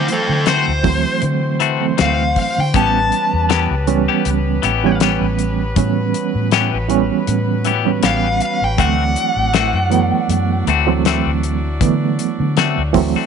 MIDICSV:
0, 0, Header, 1, 7, 480
1, 0, Start_track
1, 0, Tempo, 756620
1, 1738, Time_signature, 4, 2, 24, 8
1, 8413, End_track
2, 0, Start_track
2, 0, Title_t, "Lead electric guitar"
2, 0, Program_c, 0, 29
2, 77, Note_on_c, 0, 60, 76
2, 82, Note_on_c, 0, 69, 89
2, 292, Note_off_c, 0, 60, 0
2, 303, Note_off_c, 0, 69, 0
2, 312, Note_on_c, 0, 72, 91
2, 771, Note_off_c, 0, 72, 0
2, 1281, Note_on_c, 0, 77, 92
2, 1502, Note_off_c, 0, 77, 0
2, 1518, Note_on_c, 0, 77, 93
2, 1637, Note_off_c, 0, 77, 0
2, 1650, Note_on_c, 0, 79, 82
2, 1752, Note_off_c, 0, 79, 0
2, 1752, Note_on_c, 0, 81, 99
2, 3159, Note_off_c, 0, 81, 0
2, 5109, Note_on_c, 0, 77, 104
2, 5332, Note_off_c, 0, 77, 0
2, 5340, Note_on_c, 0, 77, 97
2, 5466, Note_off_c, 0, 77, 0
2, 5481, Note_on_c, 0, 79, 79
2, 5577, Note_off_c, 0, 79, 0
2, 5580, Note_on_c, 0, 78, 95
2, 6990, Note_off_c, 0, 78, 0
2, 8413, End_track
3, 0, Start_track
3, 0, Title_t, "Horn section"
3, 0, Program_c, 1, 61
3, 0, Note_on_c, 1, 52, 75
3, 0, Note_on_c, 1, 60, 78
3, 0, Note_on_c, 1, 66, 69
3, 0, Note_on_c, 1, 72, 85
3, 1711, Note_off_c, 1, 60, 0
3, 1711, Note_off_c, 1, 72, 0
3, 1712, Note_off_c, 1, 52, 0
3, 1714, Note_off_c, 1, 66, 0
3, 1727, Note_on_c, 1, 67, 70
3, 1728, Note_on_c, 1, 59, 76
3, 1728, Note_on_c, 1, 61, 75
3, 1728, Note_on_c, 1, 71, 83
3, 3631, Note_off_c, 1, 67, 0
3, 3639, Note_on_c, 1, 54, 64
3, 3639, Note_on_c, 1, 66, 70
3, 5544, Note_off_c, 1, 59, 0
3, 5544, Note_off_c, 1, 61, 0
3, 5544, Note_off_c, 1, 71, 0
3, 5570, Note_on_c, 1, 62, 77
3, 5570, Note_on_c, 1, 74, 84
3, 5573, Note_on_c, 1, 64, 77
3, 8413, Note_off_c, 1, 54, 0
3, 8413, Note_off_c, 1, 62, 0
3, 8413, Note_off_c, 1, 64, 0
3, 8413, Note_off_c, 1, 66, 0
3, 8413, Note_off_c, 1, 74, 0
3, 8413, End_track
4, 0, Start_track
4, 0, Title_t, "Clean electric guitar"
4, 0, Program_c, 2, 27
4, 296, Note_on_c, 2, 52, 84
4, 298, Note_on_c, 2, 57, 82
4, 302, Note_on_c, 2, 60, 85
4, 303, Note_on_c, 2, 66, 89
4, 451, Note_off_c, 2, 52, 0
4, 452, Note_off_c, 2, 57, 0
4, 454, Note_off_c, 2, 60, 0
4, 454, Note_off_c, 2, 66, 0
4, 1015, Note_on_c, 2, 52, 77
4, 1020, Note_on_c, 2, 57, 69
4, 1025, Note_on_c, 2, 60, 74
4, 1027, Note_on_c, 2, 66, 76
4, 1170, Note_off_c, 2, 52, 0
4, 1173, Note_off_c, 2, 57, 0
4, 1176, Note_off_c, 2, 60, 0
4, 1176, Note_off_c, 2, 66, 0
4, 1254, Note_on_c, 2, 52, 75
4, 1256, Note_on_c, 2, 57, 78
4, 1260, Note_on_c, 2, 60, 82
4, 1262, Note_on_c, 2, 66, 76
4, 1410, Note_off_c, 2, 52, 0
4, 1411, Note_off_c, 2, 57, 0
4, 1413, Note_off_c, 2, 60, 0
4, 1414, Note_off_c, 2, 66, 0
4, 1739, Note_on_c, 2, 52, 71
4, 1744, Note_on_c, 2, 59, 82
4, 1745, Note_on_c, 2, 61, 83
4, 1749, Note_on_c, 2, 67, 81
4, 1892, Note_off_c, 2, 52, 0
4, 1895, Note_off_c, 2, 59, 0
4, 1895, Note_off_c, 2, 61, 0
4, 1897, Note_off_c, 2, 67, 0
4, 2216, Note_on_c, 2, 52, 82
4, 2220, Note_on_c, 2, 59, 79
4, 2223, Note_on_c, 2, 61, 82
4, 2224, Note_on_c, 2, 67, 100
4, 2371, Note_off_c, 2, 52, 0
4, 2373, Note_off_c, 2, 59, 0
4, 2374, Note_off_c, 2, 61, 0
4, 2375, Note_off_c, 2, 67, 0
4, 2591, Note_on_c, 2, 67, 59
4, 2597, Note_on_c, 2, 61, 51
4, 2602, Note_on_c, 2, 59, 46
4, 2724, Note_off_c, 2, 67, 0
4, 2727, Note_off_c, 2, 61, 0
4, 2729, Note_off_c, 2, 59, 0
4, 2934, Note_on_c, 2, 52, 71
4, 2939, Note_on_c, 2, 59, 69
4, 2945, Note_on_c, 2, 61, 68
4, 2947, Note_on_c, 2, 67, 83
4, 3089, Note_off_c, 2, 52, 0
4, 3092, Note_off_c, 2, 59, 0
4, 3095, Note_off_c, 2, 61, 0
4, 3096, Note_off_c, 2, 67, 0
4, 3182, Note_on_c, 2, 52, 76
4, 3184, Note_on_c, 2, 59, 95
4, 3186, Note_on_c, 2, 61, 94
4, 3188, Note_on_c, 2, 67, 88
4, 3334, Note_off_c, 2, 52, 0
4, 3334, Note_off_c, 2, 59, 0
4, 3335, Note_off_c, 2, 61, 0
4, 3336, Note_off_c, 2, 67, 0
4, 4139, Note_on_c, 2, 52, 94
4, 4143, Note_on_c, 2, 59, 89
4, 4144, Note_on_c, 2, 61, 113
4, 4146, Note_on_c, 2, 67, 107
4, 4291, Note_off_c, 2, 52, 0
4, 4293, Note_off_c, 2, 59, 0
4, 4294, Note_off_c, 2, 61, 0
4, 4295, Note_off_c, 2, 67, 0
4, 4853, Note_on_c, 2, 52, 70
4, 4860, Note_on_c, 2, 59, 72
4, 4863, Note_on_c, 2, 61, 68
4, 4868, Note_on_c, 2, 67, 72
4, 5008, Note_off_c, 2, 52, 0
4, 5012, Note_off_c, 2, 59, 0
4, 5013, Note_off_c, 2, 61, 0
4, 5015, Note_off_c, 2, 67, 0
4, 5094, Note_on_c, 2, 52, 74
4, 5097, Note_on_c, 2, 59, 85
4, 5099, Note_on_c, 2, 61, 79
4, 5102, Note_on_c, 2, 67, 85
4, 5248, Note_off_c, 2, 52, 0
4, 5249, Note_off_c, 2, 59, 0
4, 5251, Note_off_c, 2, 61, 0
4, 5252, Note_off_c, 2, 67, 0
4, 5573, Note_on_c, 2, 52, 70
4, 5576, Note_on_c, 2, 57, 78
4, 5579, Note_on_c, 2, 60, 79
4, 5583, Note_on_c, 2, 66, 89
4, 5728, Note_off_c, 2, 52, 0
4, 5729, Note_off_c, 2, 57, 0
4, 5731, Note_off_c, 2, 60, 0
4, 5732, Note_off_c, 2, 66, 0
4, 6050, Note_on_c, 2, 52, 96
4, 6055, Note_on_c, 2, 57, 91
4, 6058, Note_on_c, 2, 60, 85
4, 6061, Note_on_c, 2, 66, 88
4, 6206, Note_off_c, 2, 52, 0
4, 6208, Note_off_c, 2, 57, 0
4, 6210, Note_off_c, 2, 60, 0
4, 6211, Note_off_c, 2, 66, 0
4, 6772, Note_on_c, 2, 52, 64
4, 6776, Note_on_c, 2, 57, 71
4, 6782, Note_on_c, 2, 60, 81
4, 6786, Note_on_c, 2, 66, 86
4, 6927, Note_off_c, 2, 52, 0
4, 6928, Note_off_c, 2, 57, 0
4, 6932, Note_off_c, 2, 60, 0
4, 6933, Note_off_c, 2, 66, 0
4, 7017, Note_on_c, 2, 52, 90
4, 7021, Note_on_c, 2, 57, 94
4, 7024, Note_on_c, 2, 60, 103
4, 7025, Note_on_c, 2, 66, 95
4, 7169, Note_off_c, 2, 52, 0
4, 7171, Note_off_c, 2, 57, 0
4, 7173, Note_off_c, 2, 60, 0
4, 7173, Note_off_c, 2, 66, 0
4, 7977, Note_on_c, 2, 52, 100
4, 7981, Note_on_c, 2, 57, 106
4, 7982, Note_on_c, 2, 60, 105
4, 7984, Note_on_c, 2, 66, 107
4, 8129, Note_off_c, 2, 52, 0
4, 8131, Note_off_c, 2, 57, 0
4, 8132, Note_off_c, 2, 60, 0
4, 8133, Note_off_c, 2, 66, 0
4, 8350, Note_on_c, 2, 66, 48
4, 8355, Note_on_c, 2, 60, 49
4, 8361, Note_on_c, 2, 57, 43
4, 8413, Note_off_c, 2, 57, 0
4, 8413, Note_off_c, 2, 60, 0
4, 8413, Note_off_c, 2, 66, 0
4, 8413, End_track
5, 0, Start_track
5, 0, Title_t, "Reed electric piano"
5, 0, Program_c, 3, 4
5, 0, Note_on_c, 3, 52, 75
5, 0, Note_on_c, 3, 54, 69
5, 0, Note_on_c, 3, 57, 73
5, 0, Note_on_c, 3, 60, 84
5, 437, Note_off_c, 3, 52, 0
5, 438, Note_off_c, 3, 54, 0
5, 439, Note_off_c, 3, 57, 0
5, 441, Note_off_c, 3, 60, 0
5, 530, Note_on_c, 3, 52, 98
5, 530, Note_on_c, 3, 54, 89
5, 536, Note_on_c, 3, 57, 74
5, 536, Note_on_c, 3, 60, 97
5, 1040, Note_off_c, 3, 54, 0
5, 1041, Note_off_c, 3, 52, 0
5, 1043, Note_off_c, 3, 57, 0
5, 1044, Note_off_c, 3, 60, 0
5, 1144, Note_on_c, 3, 52, 79
5, 1146, Note_on_c, 3, 54, 68
5, 1149, Note_on_c, 3, 60, 97
5, 1151, Note_on_c, 3, 57, 76
5, 1649, Note_off_c, 3, 52, 0
5, 1650, Note_off_c, 3, 54, 0
5, 1651, Note_off_c, 3, 60, 0
5, 1652, Note_off_c, 3, 57, 0
5, 1737, Note_on_c, 3, 52, 74
5, 1740, Note_on_c, 3, 55, 62
5, 1744, Note_on_c, 3, 59, 65
5, 1746, Note_on_c, 3, 61, 76
5, 2354, Note_off_c, 3, 52, 0
5, 2355, Note_off_c, 3, 55, 0
5, 2357, Note_off_c, 3, 59, 0
5, 2359, Note_off_c, 3, 61, 0
5, 2455, Note_on_c, 3, 52, 95
5, 2460, Note_on_c, 3, 55, 97
5, 2460, Note_on_c, 3, 61, 113
5, 2462, Note_on_c, 3, 59, 93
5, 2962, Note_off_c, 3, 52, 0
5, 2965, Note_off_c, 3, 55, 0
5, 2965, Note_off_c, 3, 61, 0
5, 2966, Note_off_c, 3, 59, 0
5, 3068, Note_on_c, 3, 52, 103
5, 3072, Note_on_c, 3, 55, 96
5, 3076, Note_on_c, 3, 59, 95
5, 3080, Note_on_c, 3, 61, 106
5, 3570, Note_off_c, 3, 52, 0
5, 3571, Note_off_c, 3, 55, 0
5, 3573, Note_off_c, 3, 59, 0
5, 3576, Note_off_c, 3, 61, 0
5, 3657, Note_on_c, 3, 52, 91
5, 3659, Note_on_c, 3, 55, 79
5, 3662, Note_on_c, 3, 59, 87
5, 3664, Note_on_c, 3, 61, 100
5, 4273, Note_off_c, 3, 52, 0
5, 4274, Note_off_c, 3, 55, 0
5, 4275, Note_off_c, 3, 59, 0
5, 4276, Note_off_c, 3, 61, 0
5, 4368, Note_on_c, 3, 52, 112
5, 4372, Note_on_c, 3, 55, 95
5, 4374, Note_on_c, 3, 59, 106
5, 4380, Note_on_c, 3, 61, 125
5, 4878, Note_off_c, 3, 52, 0
5, 4879, Note_off_c, 3, 55, 0
5, 4881, Note_off_c, 3, 59, 0
5, 4884, Note_off_c, 3, 61, 0
5, 4981, Note_on_c, 3, 52, 77
5, 4982, Note_on_c, 3, 55, 78
5, 4986, Note_on_c, 3, 59, 81
5, 4988, Note_on_c, 3, 61, 91
5, 5485, Note_off_c, 3, 52, 0
5, 5486, Note_off_c, 3, 55, 0
5, 5488, Note_off_c, 3, 59, 0
5, 5489, Note_off_c, 3, 61, 0
5, 5566, Note_on_c, 3, 52, 76
5, 5569, Note_on_c, 3, 54, 64
5, 5569, Note_on_c, 3, 57, 72
5, 5574, Note_on_c, 3, 60, 84
5, 6186, Note_off_c, 3, 52, 0
5, 6188, Note_off_c, 3, 54, 0
5, 6188, Note_off_c, 3, 57, 0
5, 6190, Note_off_c, 3, 60, 0
5, 6280, Note_on_c, 3, 52, 104
5, 6280, Note_on_c, 3, 54, 100
5, 6284, Note_on_c, 3, 57, 96
5, 6290, Note_on_c, 3, 59, 114
5, 6793, Note_off_c, 3, 52, 0
5, 6793, Note_off_c, 3, 54, 0
5, 6795, Note_off_c, 3, 57, 0
5, 6798, Note_off_c, 3, 59, 0
5, 6894, Note_on_c, 3, 54, 96
5, 6895, Note_on_c, 3, 52, 98
5, 6901, Note_on_c, 3, 57, 93
5, 6902, Note_on_c, 3, 60, 116
5, 7401, Note_off_c, 3, 52, 0
5, 7401, Note_off_c, 3, 54, 0
5, 7404, Note_off_c, 3, 57, 0
5, 7405, Note_off_c, 3, 60, 0
5, 7491, Note_on_c, 3, 52, 100
5, 7495, Note_on_c, 3, 54, 82
5, 7495, Note_on_c, 3, 57, 85
5, 7499, Note_on_c, 3, 59, 105
5, 8109, Note_off_c, 3, 52, 0
5, 8111, Note_off_c, 3, 54, 0
5, 8111, Note_off_c, 3, 57, 0
5, 8113, Note_off_c, 3, 59, 0
5, 8202, Note_on_c, 3, 52, 116
5, 8207, Note_on_c, 3, 54, 108
5, 8211, Note_on_c, 3, 57, 105
5, 8214, Note_on_c, 3, 60, 127
5, 8413, Note_off_c, 3, 52, 0
5, 8413, Note_off_c, 3, 54, 0
5, 8413, Note_off_c, 3, 57, 0
5, 8413, Note_off_c, 3, 60, 0
5, 8413, End_track
6, 0, Start_track
6, 0, Title_t, "Fingered electric bass"
6, 0, Program_c, 4, 33
6, 185, Note_on_c, 4, 50, 99
6, 416, Note_off_c, 4, 50, 0
6, 429, Note_on_c, 4, 38, 83
6, 658, Note_off_c, 4, 38, 0
6, 778, Note_on_c, 4, 50, 85
6, 1233, Note_off_c, 4, 50, 0
6, 1266, Note_on_c, 4, 38, 96
6, 1490, Note_off_c, 4, 38, 0
6, 1638, Note_on_c, 4, 50, 102
6, 1736, Note_off_c, 4, 50, 0
6, 1739, Note_on_c, 4, 33, 105
6, 1966, Note_off_c, 4, 33, 0
6, 2114, Note_on_c, 4, 40, 84
6, 2340, Note_off_c, 4, 40, 0
6, 2353, Note_on_c, 4, 37, 92
6, 2579, Note_off_c, 4, 37, 0
6, 2699, Note_on_c, 4, 37, 96
6, 2926, Note_off_c, 4, 37, 0
6, 2937, Note_on_c, 4, 33, 89
6, 3291, Note_off_c, 4, 33, 0
6, 3307, Note_on_c, 4, 33, 92
6, 3637, Note_off_c, 4, 33, 0
6, 3658, Note_on_c, 4, 45, 97
6, 3885, Note_off_c, 4, 45, 0
6, 4028, Note_on_c, 4, 45, 93
6, 4256, Note_off_c, 4, 45, 0
6, 4270, Note_on_c, 4, 33, 84
6, 4497, Note_off_c, 4, 33, 0
6, 4617, Note_on_c, 4, 45, 97
6, 5071, Note_off_c, 4, 45, 0
6, 5095, Note_on_c, 4, 33, 92
6, 5322, Note_off_c, 4, 33, 0
6, 5466, Note_on_c, 4, 33, 104
6, 5568, Note_off_c, 4, 33, 0
6, 5573, Note_on_c, 4, 38, 110
6, 5801, Note_off_c, 4, 38, 0
6, 5939, Note_on_c, 4, 33, 97
6, 6170, Note_off_c, 4, 33, 0
6, 6179, Note_on_c, 4, 42, 95
6, 6410, Note_off_c, 4, 42, 0
6, 6527, Note_on_c, 4, 42, 104
6, 6758, Note_off_c, 4, 42, 0
6, 6768, Note_on_c, 4, 38, 83
6, 7124, Note_off_c, 4, 38, 0
6, 7143, Note_on_c, 4, 38, 82
6, 7473, Note_off_c, 4, 38, 0
6, 7494, Note_on_c, 4, 50, 117
6, 7721, Note_off_c, 4, 50, 0
6, 7865, Note_on_c, 4, 50, 108
6, 8093, Note_off_c, 4, 50, 0
6, 8105, Note_on_c, 4, 38, 84
6, 8333, Note_off_c, 4, 38, 0
6, 8413, End_track
7, 0, Start_track
7, 0, Title_t, "Drums"
7, 53, Note_on_c, 9, 42, 74
7, 117, Note_off_c, 9, 42, 0
7, 291, Note_on_c, 9, 42, 81
7, 297, Note_on_c, 9, 38, 85
7, 355, Note_off_c, 9, 42, 0
7, 360, Note_off_c, 9, 38, 0
7, 533, Note_on_c, 9, 46, 74
7, 535, Note_on_c, 9, 36, 87
7, 596, Note_off_c, 9, 46, 0
7, 598, Note_off_c, 9, 36, 0
7, 772, Note_on_c, 9, 42, 86
7, 836, Note_off_c, 9, 42, 0
7, 1016, Note_on_c, 9, 42, 65
7, 1080, Note_off_c, 9, 42, 0
7, 1256, Note_on_c, 9, 42, 92
7, 1262, Note_on_c, 9, 38, 116
7, 1320, Note_off_c, 9, 42, 0
7, 1326, Note_off_c, 9, 38, 0
7, 1497, Note_on_c, 9, 46, 85
7, 1499, Note_on_c, 9, 36, 74
7, 1561, Note_off_c, 9, 46, 0
7, 1562, Note_off_c, 9, 36, 0
7, 1739, Note_on_c, 9, 42, 87
7, 1740, Note_on_c, 9, 36, 122
7, 1802, Note_off_c, 9, 42, 0
7, 1803, Note_off_c, 9, 36, 0
7, 1980, Note_on_c, 9, 42, 60
7, 2043, Note_off_c, 9, 42, 0
7, 2219, Note_on_c, 9, 42, 70
7, 2224, Note_on_c, 9, 38, 93
7, 2282, Note_off_c, 9, 42, 0
7, 2288, Note_off_c, 9, 38, 0
7, 2457, Note_on_c, 9, 42, 60
7, 2521, Note_off_c, 9, 42, 0
7, 2698, Note_on_c, 9, 42, 88
7, 2761, Note_off_c, 9, 42, 0
7, 2937, Note_on_c, 9, 42, 67
7, 3001, Note_off_c, 9, 42, 0
7, 3174, Note_on_c, 9, 42, 95
7, 3180, Note_on_c, 9, 38, 118
7, 3237, Note_off_c, 9, 42, 0
7, 3243, Note_off_c, 9, 38, 0
7, 3417, Note_on_c, 9, 42, 65
7, 3481, Note_off_c, 9, 42, 0
7, 3655, Note_on_c, 9, 42, 100
7, 3657, Note_on_c, 9, 36, 127
7, 3719, Note_off_c, 9, 42, 0
7, 3720, Note_off_c, 9, 36, 0
7, 3898, Note_on_c, 9, 42, 77
7, 3961, Note_off_c, 9, 42, 0
7, 4133, Note_on_c, 9, 42, 74
7, 4139, Note_on_c, 9, 38, 88
7, 4197, Note_off_c, 9, 42, 0
7, 4202, Note_off_c, 9, 38, 0
7, 4375, Note_on_c, 9, 42, 68
7, 4438, Note_off_c, 9, 42, 0
7, 4615, Note_on_c, 9, 42, 85
7, 4678, Note_off_c, 9, 42, 0
7, 4850, Note_on_c, 9, 42, 70
7, 4914, Note_off_c, 9, 42, 0
7, 5092, Note_on_c, 9, 42, 98
7, 5098, Note_on_c, 9, 38, 126
7, 5155, Note_off_c, 9, 42, 0
7, 5161, Note_off_c, 9, 38, 0
7, 5332, Note_on_c, 9, 42, 68
7, 5395, Note_off_c, 9, 42, 0
7, 5572, Note_on_c, 9, 36, 125
7, 5573, Note_on_c, 9, 42, 90
7, 5635, Note_off_c, 9, 36, 0
7, 5637, Note_off_c, 9, 42, 0
7, 5811, Note_on_c, 9, 42, 69
7, 5874, Note_off_c, 9, 42, 0
7, 6049, Note_on_c, 9, 42, 75
7, 6055, Note_on_c, 9, 38, 94
7, 6113, Note_off_c, 9, 42, 0
7, 6118, Note_off_c, 9, 38, 0
7, 6290, Note_on_c, 9, 42, 64
7, 6353, Note_off_c, 9, 42, 0
7, 6531, Note_on_c, 9, 42, 88
7, 6594, Note_off_c, 9, 42, 0
7, 6771, Note_on_c, 9, 42, 64
7, 6834, Note_off_c, 9, 42, 0
7, 7011, Note_on_c, 9, 42, 95
7, 7017, Note_on_c, 9, 38, 118
7, 7075, Note_off_c, 9, 42, 0
7, 7080, Note_off_c, 9, 38, 0
7, 7254, Note_on_c, 9, 42, 59
7, 7317, Note_off_c, 9, 42, 0
7, 7492, Note_on_c, 9, 36, 124
7, 7493, Note_on_c, 9, 42, 93
7, 7555, Note_off_c, 9, 36, 0
7, 7556, Note_off_c, 9, 42, 0
7, 7733, Note_on_c, 9, 42, 66
7, 7796, Note_off_c, 9, 42, 0
7, 7972, Note_on_c, 9, 42, 68
7, 7978, Note_on_c, 9, 38, 90
7, 8036, Note_off_c, 9, 42, 0
7, 8041, Note_off_c, 9, 38, 0
7, 8210, Note_on_c, 9, 46, 83
7, 8211, Note_on_c, 9, 36, 84
7, 8273, Note_off_c, 9, 46, 0
7, 8275, Note_off_c, 9, 36, 0
7, 8413, End_track
0, 0, End_of_file